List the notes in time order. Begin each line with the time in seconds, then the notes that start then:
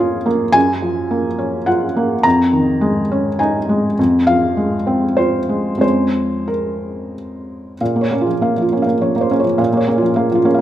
Already playing: F2 F3 A#3 C#4 F4 G#4 C#5
0.26 A#3
0.52 F#2 G#5
0.82 F3
1.11 A#3
1.39 C#4
1.66 F4 F#5
1.96 A#3
2.23 F2 A#5
2.53 D#3
2.81 G#3
3.12 C#4
3.39 D#4 G#5
3.69 G#3
3.99 F2
4.27 F3 F5
4.57 G#3
4.87 C4
5.17 F4 C5
5.49 G#3
5.77 F2 F3 G#3 C#4 C5
6.48 A#4
7.81 A#2 F5
7.96 A#3
8.01 C#5
8.11 A#3 C#4
8.21 F4
8.26 F3
8.42 A#3 F5
8.57 F3
8.62 F4
8.72 A#3 C#4
8.82 F5
8.87 A#3
9.01 F3 C#5
9.16 A#3
9.21 C5
9.31 A#3 C#4
9.40 C#5
9.44 F3
9.58 A#2 F5
9.73 A#3
9.77 C#5
9.88 A#3 C#4
9.98 F4
10.02 F3
10.16 A#3 F5
10.31 F3 F4
10.45 A#3 C#4
10.54 F5